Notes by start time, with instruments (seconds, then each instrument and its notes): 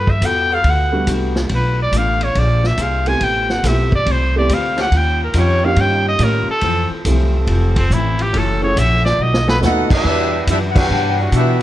Already playing: upright bass G2, steel-string acoustic guitar F#4 A4, trumpet B4
0.07 trumpet E5, kick
0.21 upright bass E2, steel-string acoustic guitar G3 B3 F#4 A4, kick, hi-hat pedal, ride
0.25 trumpet G5
0.49 saxophone section G3 B3 F#4 A4
0.54 trumpet F5
0.64 upright bass D2, steel-string acoustic guitar G3 B3 F#4 A4, kick, ride
0.70 trumpet F#5
0.92 grand piano G3 A3 B3 D4 F#4
1.07 upright bass C2, steel-string acoustic guitar G3 B3 F#4 A4, kick, hi-hat pedal, ride
1.36 snare
1.49 upright bass B1, steel-string acoustic guitar B2 A3 D4 F4, kick, ride
1.55 trumpet B4
1.82 trumpet D5
1.92 upright bass A1, steel-string acoustic guitar B2 A3 D4 F4, kick, hi-hat pedal, ride
1.97 trumpet F5
2.21 trumpet C#5, ride
2.35 upright bass A#1, steel-string acoustic guitar A#3 D4 G#4 C5, trumpet D5, kick, ride
2.64 trumpet E5, snare
2.78 upright bass C2, steel-string acoustic guitar A#3 D4 G#4 C5, kick, hi-hat pedal, ride
2.82 trumpet F5
3.06 grand piano A3 B3 C4 E4 G4, trumpet G#5, ride
3.20 upright bass A1, steel-string acoustic guitar A3 C4 G4 B4, trumpet G5, kick, ride
3.50 trumpet F#5, snare
3.63 upright bass B1, steel-string acoustic guitar A3 C4 G4 B4, grand piano A3 B3 C4 E4 G4, trumpet E5, kick, snare, hi-hat pedal, ride
3.92 trumpet D5, kick
4.06 upright bass C2, steel-string acoustic guitar A3 C4 G4 B4, kick, ride
4.11 trumpet C5
4.36 grand piano A3 B3 C4 E4 G4, trumpet D5
4.49 upright bass D2, steel-string acoustic guitar A3 C4 G4 B4, kick, hi-hat pedal, ride
4.54 trumpet F5
4.76 saxophone section F3 C#4 D#4 G4, snare, ride
4.82 trumpet F#5
4.91 upright bass D#2, steel-string acoustic guitar D#3 G3 C#4 F4, kick, ride
4.97 trumpet G5
5.24 trumpet A#4
5.34 upright bass F2, steel-string acoustic guitar D#3 G3 C#4 F4, saxophone section F3 C#4 D#4 G4, kick, hi-hat pedal, ride
5.39 trumpet C#5
5.63 grand piano A#3 C#4 D#4 F4 G4, trumpet F5
5.76 upright bass G2, steel-string acoustic guitar D#3 G3, kick, ride
5.80 steel-string acoustic guitar C#4 F4, trumpet G5
6.08 trumpet D#5
6.19 upright bass A2, steel-string acoustic guitar D#3 G3 C#4 F4, grand piano A#3 C#4 D#4 F4 G4, kick, hi-hat pedal, ride
6.23 trumpet A#4
6.48 trumpet A4, muted upright bass stroke
6.61 upright bass F2, steel-string acoustic guitar F2 E3 A3 C4, saxophone section F3 C4 A4, kick, ride
6.90 muted upright bass stroke
7.05 upright bass C2, steel-string acoustic guitar F2 E3 A3 C4, grand piano A3 C4 E4 F4 G4, kick, hi-hat pedal, ride
7.47 upright bass F1, steel-string acoustic guitar F2 E3 A3 C4, kick, ride
7.76 trumpet C4, kick, ride
7.90 upright bass A1, steel-string acoustic guitar F2 E3 A3 C4, trumpet E4, kick, hi-hat pedal
8.19 trumpet G4, ride
8.32 upright bass F#1, steel-string acoustic guitar F#2 E3 A3 C#4, saxophone section F#3 C#4 E4 A4, kick, ride
8.38 trumpet A4
8.62 grand piano A3 C#4 E4 F#4 G#4, trumpet C#5
8.76 upright bass A#1, steel-string acoustic guitar F#2 E3 A3 C#4, trumpet E5, kick, hi-hat pedal, ride
9.05 trumpet D5, snare
9.18 upright bass B1, steel-string acoustic guitar B2 F#3 A3 D#4, trumpet D#5
9.34 snare
9.47 saxophone section F#3 B3 D#4 A4, trumpet B4, snare
9.61 upright bass D#2, steel-string acoustic guitar B2 F#3 A3 D#4, grand piano A3 B3 D#4 F#4 B4, trombone section A3 D#4 F#4, snare, hi-hat pedal
9.65 trumpet section D#4 A4 B4 F#5
9.90 trombone section G3 B3 E4, trumpet section D4 G4 B4 E5, muted upright bass stroke, kick, crash
10.04 upright bass E2, steel-string acoustic guitar E3 G3 D4 F#4, kick
10.47 upright bass F#2, steel-string acoustic guitar E3 G3 D4 F#4, trombone section G3 B3 E4, trumpet section D4 G4 B4 E5, kick, hi-hat pedal, ride
10.69 trumpet section F#5
10.75 saxophone section E3 G3 D4 F#4, trombone section B3 D4 G4, trumpet section D4 B4 F#5 G5, kick, crash
10.90 upright bass G2, steel-string acoustic guitar E3 G3 D4 F#4
11.18 saxophone section E3 G3 D4 F#4
11.32 upright bass B2, steel-string acoustic guitar E3 G3 D4 F#4, trombone section G3 B3 E4, trumpet section D4 G4 B4 E5, kick, hi-hat pedal, ride